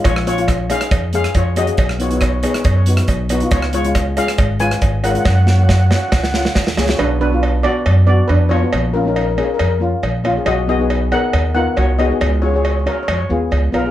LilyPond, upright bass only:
\new Staff \with { instrumentName = "Upright bass" } { \clef bass \time 4/4 \key b \lydian \tempo 4 = 138 ais,,2 eis,4 eis,4 | b,,2 fis,4 b,,4 | cis,2 gis,,4 gis,,4 | fis,2 cis,4 dis,8 cis,8 |
b,,2 fis,4 eis,4 | ais,,2 eis,4 ais,,4 | b,,2 dis,4 bis,,4 | cis,2 f,8 ees,8 cis,8 ces,8 | }